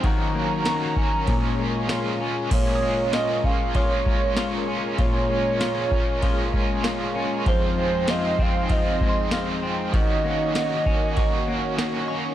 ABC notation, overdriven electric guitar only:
X:1
M:4/4
L:1/8
Q:1/4=97
K:Bbm
V:1 name="Overdriven electric guitar"
[E,B,DG] [B,DG] [E,B,DG] [B,DG] [F,A,DF] [A,DF] [B,,F,A,DF] [A,DF] | [B,,F,A,DF] [A,DF] [B,,F,A,DF] [A,DF] [F,A,DF] [A,DF] [B,,F,A,DF] [A,DF] | [B,,F,A,DF] [A,DF] [B,,F,A,DF] [A,DF] [F,A,DF] [A,DF] [B,,F,A,DF] [A,DF] | [F,,C,E,A,CF] [E,A,CF] [F,,C,E,A,CF] [E,A,CF] [E,A,CF] [E,A,CF] [F,,C,E,A,CF] [E,A,CF] |
[E,B,DG] [B,DG] [E,B,DG] [B,DG] [E,B,DG] [B,DG] [E,B,DG] [B,DG] |]